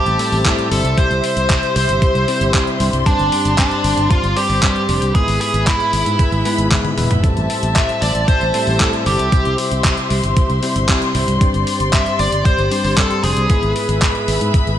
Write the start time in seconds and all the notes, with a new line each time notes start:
Already playing: A2 G3 C4 E4 G4 A4 C5 E5 A5
0.06 A1, closed hi-hat
0.19 A2 G3 C4 E4 A4, open hi-hat
0.32 A1, open hi-hat
0.45 A2 G3 C4 E4 A4, kick, clap, closed hi-hat
0.58 closed hi-hat
0.71 G1 C3 G3 C4 E4 A4, open hi-hat
0.84 C2, closed hi-hat
0.98 C3 G3 C4 E4 C5 C6, kick, closed hi-hat
1.11 C2, closed hi-hat
1.24 open hi-hat
1.37 C2, closed hi-hat
1.50 kick, clap, closed hi-hat
1.63 closed hi-hat
1.76 C2 C5, open hi-hat
1.89 G1, closed hi-hat
2.02 kick, closed hi-hat
2.15 C2, closed hi-hat
2.28 C3 G3 C4 E4 C5, open hi-hat
2.41 G1, closed hi-hat
2.54 C3 G3 C4 E4 C5, kick, clap, closed hi-hat
2.67 closed hi-hat
2.80 C2 G2 G3 C4 E4 C5, open hi-hat
2.93 C2, closed hi-hat
3.06 G2 G3 C4 D4 C5 D5, kick, closed hi-hat
3.19 G1, closed hi-hat
3.32 open hi-hat
3.45 G1, closed hi-hat
3.58 D4, kick, clap, closed hi-hat
3.71 closed hi-hat
3.84 G1, open hi-hat
3.97 G1, closed hi-hat
4.11 F4, kick, closed hi-hat
4.24 G1, closed hi-hat
4.36 G2 G3 C4 D4 G4 C5, open hi-hat
4.50 G1, open hi-hat
4.63 G2 G3 C4 D4 C5, kick, clap, closed hi-hat
4.76 closed hi-hat
4.89 F1 G3 C4 D4 C5, open hi-hat
5.02 C2, closed hi-hat
5.15 G#2 G#3 B3 E4 G#4 B4 E5 B5, kick, closed hi-hat
5.28 G#1, open hi-hat
5.41 G#4, open hi-hat
5.54 G#1, closed hi-hat
5.67 E4, kick, clap, closed hi-hat
5.80 closed hi-hat
5.93 G#1, open hi-hat
6.06 G#2, closed hi-hat
6.19 kick, closed hi-hat
6.32 G#1, closed hi-hat
6.45 G#2 G#3 B3 E4 B4, open hi-hat
6.58 G#1, closed hi-hat
6.71 G#2 G#3 B3 E4 B4, kick, clap, closed hi-hat, high tom
6.85 closed hi-hat, high tom
6.98 E1 G#3 B3 E4 B4, open hi-hat, mid tom
7.11 E1, closed hi-hat, mid tom
7.24 A2 G3 C4 E4 G4 A4 C5 A5, kick, closed hi-hat
7.37 A1, closed hi-hat
7.50 open hi-hat
7.63 A1, closed hi-hat
7.76 E5, kick, clap, closed hi-hat
7.89 closed hi-hat
8.02 A1 D5, open hi-hat
8.15 A1, closed hi-hat
8.28 C5, kick, closed hi-hat
8.41 A1, closed hi-hat
8.54 A2 G3 C4 E4 A4, open hi-hat
8.67 A1, open hi-hat
8.80 A2 G3 C4 E4 A4, kick, clap, closed hi-hat
8.93 closed hi-hat
9.06 G1 C3 G3 C4 E4 G4 A4, open hi-hat
9.19 C2, closed hi-hat
9.32 C3 G3 C4 E4 C5 C6, kick, closed hi-hat
9.45 C2, closed hi-hat
9.58 open hi-hat
9.71 C2, closed hi-hat
9.84 kick, clap, closed hi-hat
9.97 closed hi-hat
10.10 C2, open hi-hat
10.23 G1, closed hi-hat
10.37 kick, closed hi-hat
10.50 C2, closed hi-hat
10.63 C3 G3 C4 E4 C5, open hi-hat
10.76 G1, closed hi-hat
10.89 C3 G3 C4 E4 C5, kick, clap, closed hi-hat
11.02 closed hi-hat
11.15 C2 G2 G3 C4 E4 C5, open hi-hat
11.28 C2, closed hi-hat
11.41 G2 G3 C4 D4 G4 C5 D5, kick, closed hi-hat
11.54 G1, closed hi-hat
11.67 open hi-hat
11.80 G1, closed hi-hat
11.93 E5, kick, clap, closed hi-hat
12.06 closed hi-hat
12.19 G1 D5, open hi-hat
12.32 G1, closed hi-hat
12.45 C5, kick, closed hi-hat
12.58 G1, closed hi-hat
12.71 G2 G3 C4 D4 C5, open hi-hat
12.84 G1, open hi-hat
12.97 G2 G3 C4 D4 A4 C5, kick, clap, closed hi-hat
13.11 closed hi-hat
13.24 F1 G3 C4 D4 G#4 C5, open hi-hat
13.37 C2, closed hi-hat
13.50 G#2 G#3 B3 E4 G#4 B4 E5 B5, kick, closed hi-hat
13.63 G#1, closed hi-hat
13.76 open hi-hat
13.89 G#1, closed hi-hat
14.02 kick, clap, closed hi-hat
14.15 closed hi-hat
14.28 G#1, open hi-hat
14.41 G#2, closed hi-hat
14.54 kick, closed hi-hat
14.67 G#1, closed hi-hat